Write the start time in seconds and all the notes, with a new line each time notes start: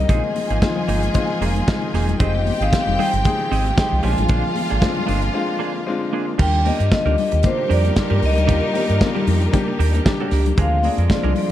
Already playing: D#3 G3 A#3 C4 D4 D#4 D#5
0.09 A#1 F3 G#3 A#3 C4 D#4 F4 G#4 G#5, kick, closed hi-hat, muted conga
0.24 muted clean electric guitar stroke, muted conga
0.35 muted clean electric guitar stroke, open hi-hat, high conga
0.50 G#1 A#3 D#4 G#4, closed hi-hat
0.62 G#3 C4 D#4 F4, muted clean electric guitar stroke, kick, snare, closed hi-hat, high conga
0.76 muted clean electric guitar stroke, muted conga, low conga
0.88 G1 A#3 D#4 G#4, open hi-hat, low conga
1.03 muted clean electric guitar stroke, closed hi-hat
1.14 G#3 C4 D#4 F4, kick, closed hi-hat, high conga
1.30 muted clean electric guitar stroke
1.41 F1 A#3 D#4 G#4, open hi-hat
1.55 muted clean electric guitar stroke, closed hi-hat, high conga
1.67 G#3 C4 D#4 F4, kick, snare, closed hi-hat
1.82 muted clean electric guitar stroke, muted conga
1.94 E1 A#3 D#4 G#4, snare, open hi-hat
2.09 muted clean electric guitar stroke, closed hi-hat, low conga
2.19 F1 F3 G#3 C4 D#4 F4 G4 G#4 D#5 G5, kick, closed hi-hat
2.35 muted clean electric guitar stroke, muted conga
2.46 muted clean electric guitar stroke, open hi-hat, high conga
2.60 G#1 C4 D#4 G#4 F5, closed hi-hat
2.72 G#3 C4 D#4 G4, kick, snare, closed hi-hat, muted conga, high conga
2.87 F1, muted clean electric guitar stroke, muted conga, low conga
2.99 C4 D#4 G#4 G5, open hi-hat, low conga
3.13 G1, muted clean electric guitar stroke, closed hi-hat
3.24 G#3 C4 D#4 G#4, kick, closed hi-hat, muted conga, high conga
3.39 muted clean electric guitar stroke, muted conga
3.51 G#1 C4 D#4 G#4, open hi-hat
3.66 muted clean electric guitar stroke, closed hi-hat, high conga
3.77 G#3 C4 D#4 G4 G5, kick, snare, closed hi-hat
3.92 C2, muted clean electric guitar stroke
4.02 A#1 D3 G#3 A#3 C4 D4 F4 G#4 F5 G#5, open hi-hat
4.18 A1, muted clean electric guitar stroke, closed hi-hat, low conga
4.29 A#1 A#3 D4 G#4, kick, closed hi-hat, muted conga
4.44 muted clean electric guitar stroke, muted conga
4.55 muted clean electric guitar stroke, open hi-hat, high conga
4.70 G#1 A#3 D4 G#4, closed hi-hat
4.82 G#3 C4 D4 F4, kick, snare, closed hi-hat, muted conga, high conga
4.96 muted clean electric guitar stroke, muted conga, low conga
5.07 G1 A#3 D4 G#4, open hi-hat, low conga
5.22 muted clean electric guitar stroke, closed hi-hat
5.34 G#3 C4 D4 F4
5.48 muted clean electric guitar stroke
5.59 A#3 D4 G#4
5.74 muted clean electric guitar stroke
5.86 G#3 C4 D4 F4
6.01 muted clean electric guitar stroke
6.13 A#3 D4 G#4
6.27 muted clean electric guitar stroke
6.38 D#2 D#3 G3 A#3 D4 F4 G4 A#4 G5, kick, crash, muted conga
6.65 D4 G4 A#4 D#5, open hi-hat, high conga
6.79 G2 D4 G4 A#4, closed hi-hat
6.91 G3 A#3 D4 F4 D#5, kick, snare, closed hi-hat, muted conga, high conga
7.06 D2 D4 G4 A#4, muted conga, low conga
7.17 D#5, muted clean electric guitar stroke, open hi-hat, low conga
7.32 D#2, muted clean electric guitar stroke, closed hi-hat
7.43 G3 A#3 D4 D#4 F4 A#4 C5, muted clean electric guitar stroke, kick, closed hi-hat, muted conga, high conga
7.58 muted clean electric guitar stroke
7.69 F2 D4 G4 A#4 D5, open hi-hat
7.84 D4 G4 A#4, closed hi-hat, high conga
7.96 G3 A#3 D4 F4, kick, snare, closed hi-hat
8.10 G2 D4 G4 A#4, muted conga
8.21 C#2, muted clean electric guitar stroke, open hi-hat
8.25 D#5
8.36 D2, muted clean electric guitar stroke, closed hi-hat, low conga
8.47 D#2 G3 A#3 D4 D#4 F4 G4 A#4, kick, closed hi-hat, muted conga
8.73 D4 G4 A#4, open hi-hat, high conga
8.88 G2 D4 G4 A#4, closed hi-hat
9.01 G3 A#3 D4 F4, kick, snare, closed hi-hat, muted conga, high conga
9.15 D4 G4 A#4, low conga
9.27 F2, muted clean electric guitar stroke, open hi-hat, low conga
9.41 muted clean electric guitar stroke, closed hi-hat
9.53 G3 A#3 D4 G4, muted clean electric guitar stroke, kick, closed hi-hat, muted conga, high conga
9.68 muted clean electric guitar stroke
9.79 D#2 D4 G4 A#4, open hi-hat
9.94 D4 G4 A#4, closed hi-hat, high conga
10.05 G3 A#3 D4 G4, kick, snare, closed hi-hat, muted conga
10.20 D4 G4 A#4, muted conga
10.31 C#2 D4 G4 A#4, snare, open hi-hat
10.46 muted clean electric guitar stroke, closed hi-hat, low conga
10.57 D2 D3 F3 G#3 C4 D4 F4 G#4 A#4 F5, kick, closed hi-hat, muted conga
10.83 D4 G#4 A#4 D5, open hi-hat, high conga
10.98 F2 D4 G#4 A#4, closed hi-hat
11.10 G#3 C4 D4 F4 D5, muted clean electric guitar stroke, kick, snare, closed hi-hat, high conga
11.23 C2 D4 G#4 A#4, muted conga, low conga
11.34 D5, muted clean electric guitar stroke, open hi-hat, low conga